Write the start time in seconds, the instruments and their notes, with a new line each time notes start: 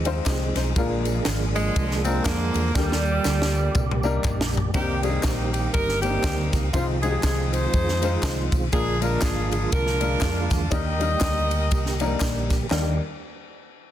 Already playing: fingered electric bass D#2, tonewheel organ F3 G#3 C4 D#4 G#4
0.05 upright piano G3 C4 D#4 F4 C5, ride, tambourine
0.12 upright piano G#3
0.26 fingered electric bass C2, upright piano G4 D#5, kick, snare, clap, ride, tambourine
0.55 fingered electric bass B1, upright piano D#4 C5, snare, ride, tambourine
0.75 fingered electric bass A#1, upright piano A#2 G#3 A#3 D4 F4 A#4, tonewheel organ F3 G#3 A#3 D4 G#4, kick, ride, tambourine
1.05 ride, tambourine
1.25 fingered electric bass G#1, snare, clap, ride, tambourine
1.56 saxophone section D3 F3 G#3, ride, tambourine
1.76 fingered electric bass C2, kick, ride, tambourine
1.91 snare
2.04 upright piano G#3 A#3 D4 F4 A#4, saxophone section C4, ride, tambourine
2.25 fingered electric bass F2, saxophone section D3 F3 A#3, kick, snare, clap, ride, tambourine
2.54 fingered electric bass E2, ride, tambourine
2.75 fingered electric bass D#2, saxophone section A#2 D3 G3, upright piano D3 G3 A#3 D4 G4 A#4, tonewheel organ G3 A#3 G4 D5, kick, snare, tambourine
2.92 snare
3.05 tambourine
3.25 fingered electric bass D2, snare, clap, tambourine
3.42 snare
3.55 tambourine
3.75 fingered electric bass C2, kick, mid tom, tambourine
3.91 mid tom
4.03 upright piano G3 A#3 D4 D#4 A#4, tambourine
4.24 fingered electric bass A#1, kick, clap, floor tom, tambourine
4.41 snare
4.54 floor tom, tambourine
4.74 fingered electric bass C2, upright piano C3 G3 A#3 C4 D#4 A#4, tonewheel organ D#3 G3 A#3 C4 G4, saxophone section A#3 D#4 G4, kick, ride, tambourine
5.03 upright piano G3 A#3 C4 D4 G4, saxophone section G#4, ride, tambourine
5.10 upright piano D#4
5.23 fingered electric bass A#1, saxophone section G4, kick, snare, clap, ride, tambourine
5.53 saxophone section G4, ride, tambourine
5.74 fingered electric bass G1, saxophone section D#4 G4 A#4, kick, ride, tambourine
5.89 snare
6.02 upright piano G3 A#3 C4 D4 A#4, saxophone section A#3 D#4 G4, ride, tambourine
6.10 upright piano D#4
6.24 fingered electric bass D2, kick, snare, clap, ride, tambourine
6.53 fingered electric bass C#2, kick, snare, ride, tambourine
6.73 fingered electric bass C2, upright piano C3 G#3 C4 D#4 F4 C5, tonewheel organ D#3 F3 G#3 F4, saxophone section G#3 F4, kick, ride, tambourine
7.02 upright piano G#3 C4 D#4 F4 F#4, saxophone section G#4, ride, tambourine
7.11 upright piano G4
7.23 fingered electric bass C2, saxophone section G#4, kick, snare, clap, ride, tambourine
7.53 saxophone section D#4 G#4 C5, ride, tambourine
7.73 fingered electric bass F2, kick, ride, tambourine
7.88 snare
8.02 upright piano G#3 C4 D#4 F4 C5, ride, tambourine
8.23 fingered electric bass C2, kick, snare, clap, ride, tambourine
8.52 fingered electric bass B1, kick, ride, tambourine
8.72 fingered electric bass A#1, upright piano A#2 G#3 A#3 D4 F4 A#4, tonewheel organ D3 F3 G#3 A#3 F4, saxophone section D4 F4 G#4, kick, ride, tambourine
9.01 upright piano G#3 A#3 D4 F4 A#4, saxophone section A#4, ride, tambourine
9.22 fingered electric bass G#1, saxophone section G#4, kick, snare, clap, ride, tambourine
9.52 saxophone section G#4, ride, tambourine
9.72 fingered electric bass C2, saxophone section D4 F4 A#4, kick, ride, tambourine
9.87 snare
10.00 upright piano G#3 A#3 D4 F4 A#4, ride, tambourine
10.21 fingered electric bass F2, kick, snare, clap, ride, tambourine
10.50 fingered electric bass E2, kick, snare, ride, tambourine
10.71 fingered electric bass D#2, upright piano D#3 G3 A#3 D4 D#4 A#4, tonewheel organ G3 A#3 G4, saxophone section G4 A#4 D#5, kick, ride, tambourine
10.99 upright piano G3 A#3 D#4 A#4, ride, tambourine
11.21 fingered electric bass D2, kick, snare, clap, ride, tambourine
11.51 ride, tambourine
11.71 fingered electric bass C2, kick, ride, tambourine
11.86 snare
11.99 upright piano F3 A#3 D4 D#4 A#4, ride, tambourine
12.06 upright piano G3
12.20 fingered electric bass A#1, kick, snare, clap, ride, tambourine
12.50 kick, snare, ride, tambourine
12.70 upright piano D#2 G3 D4 D#4 A#4, fingered electric bass D#2, tonewheel organ D#3 A#3 D4 G4, snare, clap